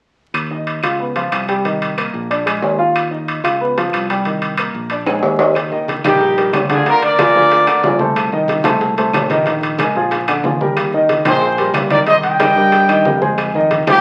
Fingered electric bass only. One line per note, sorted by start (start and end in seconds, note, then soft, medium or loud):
0.34 0.80 D#2 medium
0.83 1.29 C#2 medium
1.32 2.08 C2 medium
2.14 2.59 A#1 medium
2.62 3.39 D#2 medium
3.44 3.90 C#2 medium
3.94 4.70 C2 medium
4.74 5.20 A#1 medium
5.23 5.99 D#2 medium
6.04 6.50 A#1 medium
6.54 7.30 D2 medium
7.35 7.81 D2 medium
7.84 8.60 C2 medium
8.65 9.11 C2 medium
9.15 9.90 A#1 medium
9.95 10.41 A#1 medium
10.44 11.20 D#2 medium
11.26 11.71 A#1 medium
11.74 12.50 C2 medium
12.56 13.02 G2 medium
13.05 13.81 F2 medium
13.87 14.01 C2 medium